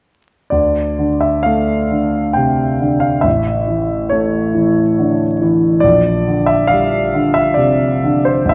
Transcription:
0.50 D2 D5
0.98 D3
1.21 E5
1.43 A3 F5
1.91 D3
2.33 C3 G5
2.80 D3
3.00 F5
3.21 A1 E5
3.67 E3
4.09 A3 C#5
4.54 E3
4.98 D3
5.42 E3
5.80 A#1 D5
6.28 D3
6.46 E5
6.67 G3 F5
7.14 D3
7.34 E5
7.54 C3 D5
8.04 D3
8.25 C5
8.45 A1
8.49 E5

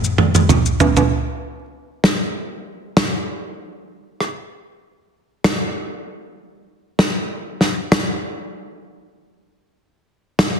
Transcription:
0.04 maracas
0.18 mid tom
0.35 mid tom, maracas
0.49 floor tom, maracas
0.66 maracas
0.80 floor tom, high timbale, maracas
0.97 floor tom, high timbale, maracas
2.04 snare
2.97 cross-stick, snare
4.20 cross-stick
5.44 cross-stick, snare
6.99 snare
7.61 snare
7.92 cross-stick, snare
10.39 cross-stick, snare

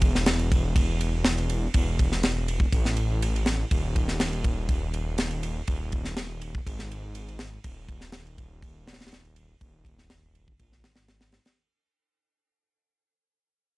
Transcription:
Already playing: E1
0.02 kick, ride
0.15 snare
0.26 snare, ride
0.39 ride
0.52 kick, ride
0.76 kick, ride
1.01 ride
1.25 snare, ride
1.38 ride
1.50 ride
1.74 E1, kick, ride
1.99 kick, ride
2.12 snare
2.23 snare, ride
2.48 ride
2.60 kick
2.73 A1, kick, ride
2.85 snare
2.97 ride
3.22 ride
3.36 ride
3.46 snare, ride
3.71 D#1, kick, ride
3.96 kick, ride
4.08 snare
4.20 snare, ride
4.33 ride
4.44 kick, ride
4.69 kick, ride
4.94 ride
5.18 snare, ride
5.31 ride
5.43 ride
5.67 D#1, kick, ride
5.92 kick, ride
6.05 snare
6.17 snare, ride
6.42 ride
6.55 kick
6.67 G#1, kick, ride
6.79 snare
6.91 ride
7.15 ride
7.28 ride
7.39 snare, ride
7.64 D#1, kick, ride
7.89 kick, ride
8.01 snare
8.12 snare, ride
8.27 ride
8.38 kick, ride
8.62 kick, ride
8.87 snare, ride
8.93 snare, ride
9.00 snare, ride
9.06 snare, ride
9.12 snare, ride
9.25 ride
9.36 ride
9.61 D#1, kick, ride
9.85 kick, ride
9.98 snare
10.10 snare, ride
10.35 ride
10.48 kick
10.59 A#1, kick, ride
10.72 snare
10.84 G#1, snare, ride
10.96 snare, ride
11.08 snare, ride
11.21 snare, ride
11.32 snare, ride
11.45 snare, ride

